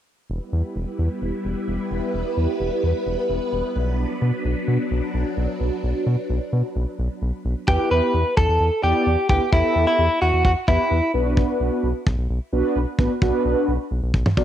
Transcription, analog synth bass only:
0.30 E1
0.53 E2
0.76 E1
0.99 E2
1.22 E1
1.45 E1
1.68 E1
1.91 E1
2.14 E1
2.37 E2
2.60 E1
2.83 E2
3.06 E1
3.29 E1
3.53 E1
3.76 B1
4.22 B2
4.45 B1
4.68 B2
4.91 B1
5.14 B1
5.37 B1
5.60 B1
5.83 B1
6.06 B2
6.30 B1
6.53 B2
6.76 B1
6.99 B1
7.22 B1
7.45 B1
7.68 E2
7.91 E2
8.14 E2
8.37 E2
8.49 E2
8.60 E2
8.83 E2
9.06 E2
9.29 D2
9.53 E2
9.76 E2
9.99 E2
10.22 E2
10.33 E2
10.45 E2
10.68 E2
10.91 E2
11.14 B1
11.60 B1
11.83 B1
12.07 B1
12.18 B1
12.30 B1
12.53 B1
12.76 B1
12.99 A1
13.22 B1
13.45 B1
13.68 B1
13.91 B1
14.03 B1
14.14 B1
14.37 B1

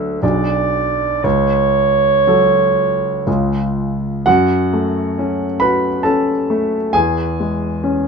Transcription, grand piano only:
Already playing: D2 F#3 D4 F#4
0.23 B1 F#3 D4 G#4
1.24 C#2
2.27 F#3 F#4 A4
3.27 C#2 G#3 F4 G#4
4.26 F#2 F#4 F#5
4.73 A3
5.19 C#4
5.60 F#4 B4 B5
6.03 C#4 A4 A5
6.50 A3
6.93 E2 G#4 G#5
7.40 G#3
7.84 C#4

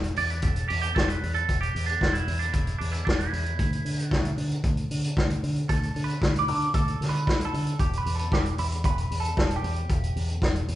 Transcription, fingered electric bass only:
0.18 E2
0.43 E1
0.70 E2
0.96 E1
1.23 E2
1.49 E1
1.75 E2
2.01 E1
2.28 E2
2.54 E1
2.80 E2
3.07 E1
3.33 E2
3.59 D2
3.85 D3
4.11 D2
4.38 D3
4.64 D2
4.91 D3
5.17 D2
5.43 D3
5.69 D2
5.96 D3
6.22 D2
6.48 D3
6.74 D2
7.01 D3
7.27 D2
7.54 D3
7.80 E1
8.06 E2
8.32 E1
8.59 E2
8.84 E1
9.11 E2
9.37 E1
9.63 E2
9.90 E1
10.16 E2
10.42 E1
10.69 E2

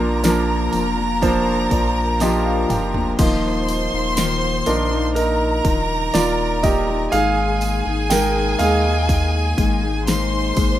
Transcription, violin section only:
Already playing: A#4 A#5
3.19 C5 C6
5.15 A#4 A#5
7.12 G#4 G#5
10.08 C5 C6

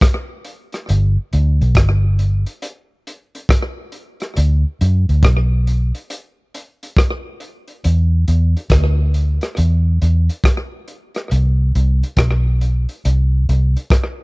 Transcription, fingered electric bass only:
0.90 G1
1.34 D2
1.61 B1
1.76 G1
4.37 D2
4.81 F#2
5.09 D2
5.24 B1
7.85 E2
8.28 E2
8.71 D2
9.58 E2
10.02 E2
11.32 C2
11.75 C2
12.18 B1
13.05 C2
13.49 C2

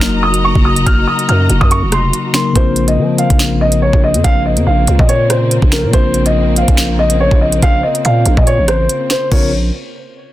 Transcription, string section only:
Already playing: F#4 D#5 A#5
2.55 C#3 A#3 C4
9.31 C#3 A#3 C4

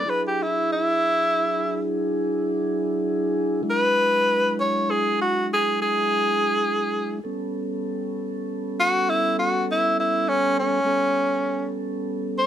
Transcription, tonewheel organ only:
0.05 F#3 D4 E4 G#4
3.63 F#3 G#3 D4 E4
7.24 G3 B3 C#4 A4
10.84 G3 B3 C#4 A4

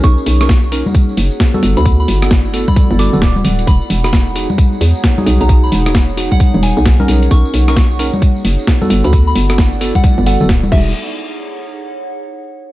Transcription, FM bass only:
0.04 B1
0.26 B1
1.17 F#1
1.63 G1
1.77 D2
2.08 G1
2.91 G1
3.13 D1
3.45 D1
3.67 E1
3.90 E1
4.81 E2
5.26 B1
5.41 B1
5.72 E1
6.54 E1
6.77 B1
7.08 B1
7.31 B1
7.54 B1
8.45 F#1
8.90 G1
9.04 D2
9.36 G1
10.18 G1
10.41 D1
10.72 E1

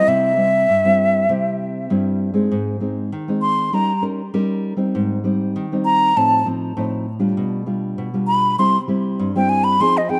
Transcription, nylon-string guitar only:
Already playing: G3 C4 E4
0.08 C3
0.37 G3 C4 E4
0.69 G2
0.85 G3 C4 E4
1.29 C3 G3 C4 E4
1.90 G2 G3 C4 E4
2.34 G#3 C4 D#4
2.51 G#2
2.80 G#3 C4 D#4
3.12 D#3
3.28 G#3 C4 D#4
3.73 G3 C#4 D#4 A#4
4.02 C#4 D#4 A#4
4.34 G3 C#4 D#4 A#4
4.77 G3 C4 D#4
4.95 G#2
5.24 G3 C4 D#4
5.56 D#3
5.72 G3 C4 D#4
6.16 A2 F3 C4 D#4
6.45 F3 C4 D#4
6.77 A2 F3 C4 D#4
7.19 G3 D4 F4
7.37 B2
7.66 G3 D4 F4
7.98 B2
8.14 G3 D4 F4
8.58 C3 G3 C4 E4
8.88 G3 C4 E4
9.19 G2
9.36 G3 C4 E4
9.80 F3 C4 D#4 G#4
10.09 C4 D#4 G#4

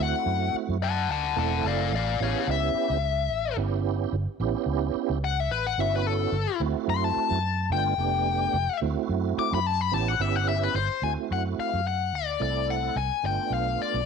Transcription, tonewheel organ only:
0.00 A3 C4 E4 F#4
1.36 A3 C4 E4 A4
2.20 B3 C#4 E4 G4
3.57 B3 C#4 E4 G4
4.40 B3 C#4 E4 G4
5.79 B3 C#4 E4 F#4
6.61 A3 C4 E4 F#4
7.71 A3 B3 D4 F4
7.99 A3 B3 D4 G4
8.81 A3 C4 E4 F#4
9.92 B3 C#4 E4 G4
10.20 B3 C#4 E4 G4
11.03 A3 C4 E4 F#4
12.40 A3 C4 E4 A4
13.23 A3 B3 D4 F4

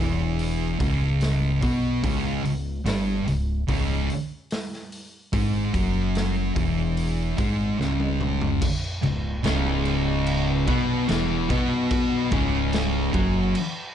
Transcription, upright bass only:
Already playing: E1
0.80 C#1
1.62 B1
2.04 C#1
2.43 C#1
2.84 G1
3.25 C#1
3.69 C#1
5.33 G#1
5.74 F#1
6.56 E1
7.38 G#1
7.79 C#1
9.04 C#1
9.44 C#1
10.68 B1
11.09 E1
11.50 B1
12.32 C#1
13.14 F#1

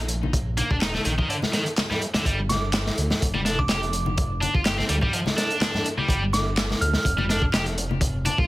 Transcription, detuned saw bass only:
Already playing: A#1
0.71 D#1
1.06 A#1
2.25 G1
2.98 D2
3.22 F1
4.55 G1
4.89 D2
6.09 G1
6.81 D2
7.05 F1
8.38 G1

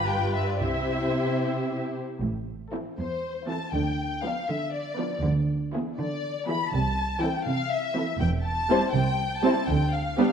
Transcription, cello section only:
Already playing: G2
0.62 C3
2.21 A2
2.99 E2
3.74 D3
4.48 D3
5.24 D3
5.99 D3
6.73 C3
7.47 C3
8.20 E2
8.95 C3
9.68 D3

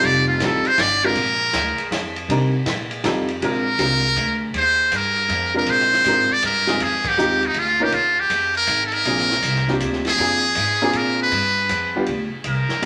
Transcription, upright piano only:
Already playing: G3 C4 D#4 F4 A4
0.42 G3 C4 D#4 F4 A4
1.04 G#3 C4 D4 F4 A#4
2.30 G3 C4 D4 D#4 A#4
3.04 G3 C4 D#4 F4 A4
3.43 G#3 C4 D4 F4 A#4
3.79 G#3 C4 D4 F4 A#4
5.54 G#3 C4 D4 F4 A#4
6.06 G#3 C4 D4 F4 A#4
6.67 G#3 C4 D#4 F4 G#4
7.17 G#3 C4 D#4 F4 G4
7.80 A#3 C#4 D#4 F4 A#4
9.06 A#3 C4 D4 F4 G#4
9.69 A#3 C4 D4 F4 G4
10.19 A#3 C4 D4 F4 G#4
10.82 A#3 C4 D4 F4 G#4
11.96 G3 B3 D4 F4 G4
12.82 A#3 D4

